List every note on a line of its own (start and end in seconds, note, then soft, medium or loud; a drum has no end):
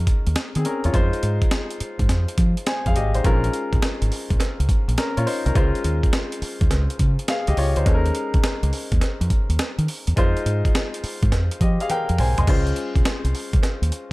0.00 0.89 G#3 medium
0.00 0.66 C#4 medium
0.00 0.93 D#4 medium
0.00 0.66 A#4 medium
0.07 kick medium
0.07 closed hi-hat medium
0.27 0.35 D#2 loud
0.27 closed hi-hat medium
0.36 snare loud
0.36 closed hi-hat medium
0.55 0.63 D#3 medium
0.55 0.65 C4 soft
0.55 0.65 G#4 medium
0.55 closed hi-hat medium
0.65 0.84 C#4 medium
0.65 0.84 A#4 medium
0.65 closed hi-hat medium
0.84 0.92 E2 medium
0.84 0.92 F4 medium
0.84 1.12 C#5 medium
0.84 closed hi-hat soft
0.92 1.10 F2 loud
0.92 3.20 G#3 medium
0.92 2.63 D#4 medium
0.92 2.63 F4 medium
0.92 2.64 C5 medium
0.92 kick loud
0.92 closed hi-hat medium
1.13 closed hi-hat soft
1.23 1.39 G#2 medium
1.23 closed hi-hat medium
1.42 kick medium
1.42 closed hi-hat soft
1.51 snare loud
1.51 closed hi-hat medium
1.71 closed hi-hat medium
1.80 muted fingered electric bass stroke soft
1.80 closed hi-hat medium
1.99 2.07 G#2 medium
1.99 kick medium
1.99 closed hi-hat medium
2.09 2.25 F2 medium
2.09 snare medium
2.09 closed hi-hat medium
2.28 closed hi-hat medium
2.38 2.54 F3 loud
2.38 kick medium
2.38 closed hi-hat medium
2.57 closed hi-hat medium
2.66 2.85 C5 medium
2.66 2.85 G#5 medium
2.66 snare medium
2.66 closed hi-hat medium
2.86 2.94 F2 medium
2.86 2.96 G#4 medium
2.86 2.95 F5 medium
2.86 kick medium
2.86 closed hi-hat medium
2.96 3.12 G#1 medium
2.96 3.15 G4 medium
2.96 3.14 D#5 medium
2.96 closed hi-hat medium
3.14 3.23 A1 medium
3.14 3.43 D#4 soft
3.14 3.42 C5 medium
3.14 closed hi-hat medium
3.24 3.48 A#1 loud
3.24 5.51 G#3 medium
3.24 4.66 C#4 medium
3.24 4.66 F4 medium
3.24 4.67 A#4 medium
3.24 kick loud
3.24 closed hi-hat medium
3.24 cowbell medium
3.44 closed hi-hat medium
3.53 closed hi-hat medium
3.73 3.81 G#1 medium
3.73 kick medium
3.73 closed hi-hat soft
3.82 snare loud
3.82 closed hi-hat medium
3.82 cowbell medium
4.02 4.10 G#1 medium
4.02 closed hi-hat medium
4.12 open hi-hat medium
4.30 4.38 A#1 medium
4.30 kick loud
4.30 closed hi-hat soft
4.40 snare medium
4.40 closed hi-hat medium
4.40 cowbell medium
4.60 4.67 C#2 medium
4.60 closed hi-hat medium
4.69 kick medium
4.69 closed hi-hat medium
4.88 4.96 A#1 loud
4.88 closed hi-hat medium
4.98 5.16 C#4 medium
4.98 5.16 A#4 medium
4.98 snare medium
4.98 closed hi-hat medium
4.98 cowbell medium
5.17 5.25 A#2 loud
5.17 5.26 F4 medium
5.17 5.26 C#5 medium
5.17 closed hi-hat medium
5.27 5.45 D#4 medium
5.27 5.45 C5 medium
5.27 open hi-hat medium
5.46 5.54 C2 medium
5.46 5.54 C#4 medium
5.46 5.73 A#4 medium
5.46 closed hi-hat medium
5.54 5.71 C#2 loud
5.54 7.82 G#3 medium
5.54 7.82 C#4 medium
5.54 7.25 F4 medium
5.54 7.26 C5 medium
5.54 kick loud
5.54 closed hi-hat medium
5.54 cowbell medium
5.75 closed hi-hat soft
5.84 6.00 D#2 medium
5.84 closed hi-hat medium
6.03 kick medium
6.03 closed hi-hat soft
6.13 snare loud
6.13 closed hi-hat medium
6.13 cowbell medium
6.32 closed hi-hat medium
6.42 muted fingered electric bass stroke soft
6.42 open hi-hat medium
6.61 6.69 D#2 medium
6.61 kick loud
6.61 closed hi-hat medium
6.71 6.87 C#2 loud
6.71 snare medium
6.71 closed hi-hat medium
6.71 cowbell medium
6.90 closed hi-hat medium
6.99 7.15 C#3 loud
6.99 kick medium
6.99 closed hi-hat medium
7.19 closed hi-hat medium
7.28 7.47 G#4 medium
7.28 7.47 F5 medium
7.28 snare loud
7.28 closed hi-hat medium
7.28 cowbell medium
7.47 7.56 C#2 medium
7.47 7.57 G4 medium
7.47 7.57 D#5 medium
7.47 closed hi-hat soft
7.57 7.73 C#2 loud
7.57 7.76 F4 medium
7.57 7.76 C#5 medium
7.57 open hi-hat medium
7.76 7.84 D2 medium
7.76 7.85 D#4 medium
7.76 8.04 C5 medium
7.76 closed hi-hat medium
7.85 8.10 D#2 loud
7.85 10.12 G#3 medium
7.85 10.13 C#4 medium
7.85 10.13 D#4 medium
7.85 7.96 A4 medium
7.85 kick loud
7.85 closed hi-hat medium
7.85 cowbell medium
7.94 10.17 A#4 medium
8.06 closed hi-hat soft
8.15 closed hi-hat medium
8.34 8.42 C#2 medium
8.34 kick medium
8.34 closed hi-hat soft
8.43 muted fingered electric bass stroke soft
8.43 snare loud
8.43 closed hi-hat medium
8.43 cowbell medium
8.63 8.71 C#2 medium
8.63 closed hi-hat medium
8.73 open hi-hat medium
8.92 9.00 D#2 loud
8.92 kick loud
8.92 closed hi-hat soft
9.01 snare medium
9.01 closed hi-hat medium
9.01 cowbell medium
9.21 9.29 F2 loud
9.21 closed hi-hat medium
9.30 kick medium
9.30 closed hi-hat medium
9.49 9.57 D#2 medium
9.49 closed hi-hat medium
9.59 snare loud
9.59 closed hi-hat medium
9.59 cowbell medium
9.78 9.86 D#3 loud
9.78 closed hi-hat medium
9.88 open hi-hat medium
10.07 10.15 E2 medium
10.07 closed hi-hat medium
10.16 10.33 F2 loud
10.16 12.14 G#3 medium
10.16 12.15 D#4 medium
10.16 12.15 F4 medium
10.16 11.59 C5 medium
10.16 kick loud
10.16 closed hi-hat medium
10.16 cowbell medium
10.37 closed hi-hat soft
10.46 10.62 G#2 medium
10.46 closed hi-hat medium
10.65 kick medium
10.65 closed hi-hat soft
10.75 snare loud
10.75 closed hi-hat medium
10.75 cowbell medium
10.94 closed hi-hat medium
11.03 muted fingered electric bass stroke soft
11.03 open hi-hat medium
11.23 11.31 G#2 loud
11.23 kick loud
11.23 closed hi-hat soft
11.32 11.48 F2 loud
11.32 snare medium
11.32 closed hi-hat medium
11.32 cowbell medium
11.51 closed hi-hat soft
11.61 11.77 F3 loud
11.61 11.80 G4 soft
11.61 11.80 D#5 medium
11.61 kick medium
11.61 closed hi-hat medium
11.80 11.90 G#4 medium
11.80 11.90 F5 medium
11.80 closed hi-hat medium
11.90 12.18 A#4 medium
11.90 12.18 G5 medium
11.90 closed hi-hat medium
11.90 high tom medium
11.90 cowbell medium
12.09 12.17 F2 medium
12.09 closed hi-hat soft
12.19 12.35 B1 medium
12.19 12.38 C5 medium
12.19 12.37 G#5 medium
12.19 mid tom medium
12.19 open hi-hat medium
12.38 12.46 C2 medium
12.38 12.66 D#5 medium
12.38 12.66 C6 medium
12.38 closed hi-hat medium
12.38 floor tom medium
12.47 12.71 C#2 loud
12.47 14.13 G#3 medium
12.47 14.13 C#4 medium
12.47 14.13 F4 medium
12.47 14.13 C5 medium
12.47 kick loud
12.47 closed hi-hat medium
12.47 crash medium
12.47 cowbell medium
12.67 closed hi-hat soft
12.76 closed hi-hat medium
12.96 13.04 C2 medium
12.96 kick medium
12.96 closed hi-hat soft
13.05 muted fingered electric bass stroke soft
13.05 snare loud
13.05 closed hi-hat medium
13.05 cowbell medium
13.24 13.32 C2 medium
13.24 closed hi-hat medium
13.35 open hi-hat medium
13.53 13.61 C#2 medium
13.53 kick loud
13.53 closed hi-hat medium
13.62 muted fingered electric bass stroke soft
13.62 snare medium
13.62 closed hi-hat medium
13.62 cowbell medium
13.82 13.90 D#2 medium
13.82 closed hi-hat medium
13.92 closed hi-hat medium